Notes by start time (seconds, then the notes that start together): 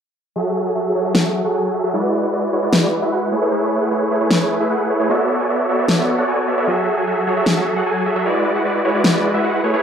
0.36 F#3 F#4 G#4 A4 E5
0.65 F#3 F#4 G#4 A4 G#5
0.75 F#3 F#4 G#4 A4 E5
0.95 F#3 F#4 G#4 A4 C#5
1.05 F#3 F#4 G#4 A4 E5
1.15 F#3 F#4 G#4 A4 E5, snare
1.25 F#3 F#4 G#4 A4 E5
1.44 F#3 F#4 G#4 A4 F#5
1.54 F#3 F#4 G#4 A4 G#5
1.74 F#3 F#4 G#4 A4 E5
1.84 F#3 F#4 G#4 A4 E5
1.94 G#3 E4 F#4 B4 D5
2.23 G#3 E4 F#4 B4 F#5
2.33 G#3 E4 F#4 B4 D5
2.53 G#3 E4 F#4 B4 C#5
2.63 G#3 E4 F#4 B4 D5
2.73 G#3 E4 F#4 B4 D5, snare
2.83 G#3 E4 F#4 B4 D5
3.02 G#3 E4 F#4 B4 E5
3.12 G#3 E4 F#4 B4 F#5
3.32 A3 E4 G#4 B4 C#5
3.42 A3 E4 G#4 B4 C#5
3.52 A3 E4 G#4 B4 C#5
3.81 A3 E4 G#4 B4 F#5
3.91 A3 E4 G#4 B4 C#5
4.11 A3 E4 G#4 B4 C#5
4.21 A3 E4 G#4 B4 C#5
4.31 A3 E4 G#4 B4 C#5, snare
4.40 A3 E4 G#4 B4 C#5
4.60 A3 E4 G#4 B4 E5
4.70 A3 E4 G#4 B4 F#5
4.90 A3 E4 G#4 B4 C#5
5.00 A3 E4 G#4 B4 C#5
5.09 B3 F#4 A4 C#5 D5 E5
5.39 B3 F#4 A4 C#5 D5 G#5
5.49 B3 F#4 A4 C#5 D5 E5
5.69 B3 F#4 A4 C#5 D5 E5
5.79 B3 F#4 A4 C#5 D5 E5
5.88 B3 F#4 A4 C#5 D5 E5, snare
5.98 B3 F#4 A4 C#5 D5 E5
6.18 B3 F#4 A4 C#5 D5 F#5
6.28 B3 F#4 A4 C#5 D5 G#5
6.48 B3 F#4 A4 C#5 D5 E5
6.58 B3 F#4 A4 C#5 D5 E5
6.67 F#3 F#4 G#4 A4 E5
6.97 F#3 F#4 G#4 A4 G#5
7.07 F#3 F#4 G#4 A4 E5
7.27 F#3 F#4 G#4 A4 C#5
7.37 F#3 F#4 G#4 A4 E5
7.46 F#3 F#4 G#4 A4 E5, snare
7.57 F#3 F#4 G#4 A4 E5
7.76 F#3 F#4 G#4 A4 F#5
7.86 F#3 F#4 G#4 A4 G#5
8.06 F#3 F#4 G#4 A4 E5
8.16 F#3 F#4 G#4 A4 E5
8.25 G#3 E4 F#4 B4 D5
8.55 G#3 E4 F#4 B4 F#5
8.65 G#3 E4 F#4 B4 D5
8.85 G#3 E4 F#4 B4 C#5
8.94 G#3 E4 F#4 B4 D5
9.04 G#3 E4 F#4 B4 D5, snare
9.14 G#3 E4 F#4 B4 D5
9.34 G#3 E4 F#4 B4 E5
9.44 G#3 E4 F#4 B4 F#5
9.64 A3 E4 G#4 B4 C#5
9.73 A3 E4 G#4 B4 C#5